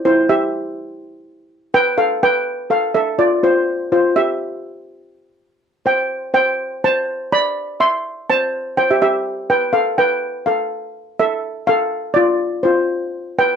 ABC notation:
X:1
M:4/4
L:1/16
Q:"Swing 16ths" 1/4=124
K:Flyd
V:1 name="Steel pan"
[Ec]2 [Ge]12 [Bg]2 | [Af]2 [Bg]4 [Af]2 [Ae]2 [Fd]2 [Fc]4 | [Fc]2 [Ge]12 z2 | [cg]4 [cg]4 [ca]4 [db]4 |
[ec']4 [ca]4 [cg] [Ge] [Ge]4 [Bg]2 | [Af]2 [Bg]4 [Af]4 z2 [Ae]4 | [Af]4 [Fd]4 [Fc]6 [Bg]2 |]